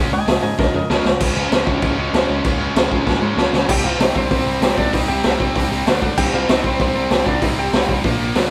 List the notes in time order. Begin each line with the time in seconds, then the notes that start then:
Already playing: C#3 G#3 C#4
0.11 C#2 C#3 G#3 D#5 G#5
0.26 C#2 C#3 G#3 D#5 G#5, snare, open hi-hat
0.41 G#2 C#3 G#3 D#5 G#5
0.58 C#2 C#3 G#3 A#4 D#5, kick, snare
0.74 F2 C#3 G#3 A#4 D#5
0.90 C#2 C#3 G#3 C#4 A#4 D#5, snare
1.05 C#2 C#3 G#3 C#5, snare
1.20 C#2 C#3 G#3 C#4, kick, crash
1.36 C#2 C#3 G#3 C#4
1.51 C#2 C#3 G#3 C#4, snare, crash
1.66 C#2 C#3 G#3 C#4, kick
1.82 C#2 C#3 G#3 C#4, kick, crash
1.97 C#2 C#3 G#3 C#4
2.12 C#2 C#3 G#3 C#4, snare, crash
2.29 C#2 C#3 G#3 C#4
2.44 C#2 C#3 G#3 C#4, kick, crash
2.59 C#3 G#3 C#4
2.74 C#2 C#3 G#3 C#4, snare, crash
2.90 C#2 C#3 G#3 C#4, kick
3.05 C#2 C#3 G#3 C#4, kick, snare
3.21 G#2 C#3 G#3 C#4
3.36 C#2 C#3 G#3 C#4, snare
3.52 C#2 C#3 G#3 C#4, snare
3.67 C2 C3 G3 C4 G4 G5, kick, crash
3.84 C2 C3 G3 C4 F4 F5
3.99 C2 C3 G3 C4 D#4 D#5, snare, open hi-hat
4.14 C2 C3 G3 C4 C5, kick
4.30 C2 C3 G3 C4 C5, kick, open hi-hat
4.46 C2 C3 G3 C4
4.61 C2 C3 G3 C4, snare, open hi-hat
4.77 C2 C3 G3 C4 D4 D5, kick
4.93 C2 C3 G3 C4 D#4 D#5, kick, open hi-hat
5.07 C2 C3 G3 C4 G4 G5
5.23 C2 C3 G3 C4, snare, open hi-hat
5.39 C2 C3 G3 C4, kick
5.54 C2 C3 G3 C4, kick, open hi-hat
5.70 C2 C3 G3 C4
5.86 D2 D3 A3 D4, snare, open hi-hat
6.01 D3 A3 D4, kick
6.17 C2 C3 G3 C4 G4 G5, kick, crash
6.32 C2 C3 G3 C4 F4 F5
6.47 C2 C3 G3 C4, snare, open hi-hat
6.52 D#4 D#5
6.64 C2 C3 G3 C4 C5, kick
6.80 C2 C3 G3 C4 C5, kick, open hi-hat
6.94 C2 C3 G3 C4
7.09 C2 C3 G3 C4, snare, open hi-hat
7.25 C2 C3 G3 C4 D5, kick
7.29 D4
7.41 C2 C3 G3 C4 D#4 D#5, kick, open hi-hat
7.56 C2 C3 G3 C4 G4 G5
7.71 C2 C3 G3 C4, snare, open hi-hat
7.87 C2 C3 G3 C4, kick
8.03 A#1 A#2 F3 A#3, kick, open hi-hat
8.19 A#1 A#2 F3 A#3
8.35 D2 D3 A3 D4, snare, open hi-hat